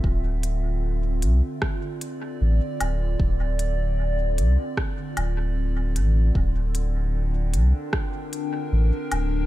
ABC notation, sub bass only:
X:1
M:4/4
L:1/8
Q:"Swing 16ths" 1/4=76
K:Dm
V:1 name="Sub bass" clef=bass
D,,,3 C,, z2 A,,, D,,, | D,,,3 C,, z D,,,2 A,,, | D,,,3 C,, z2 A,,, D,,, |]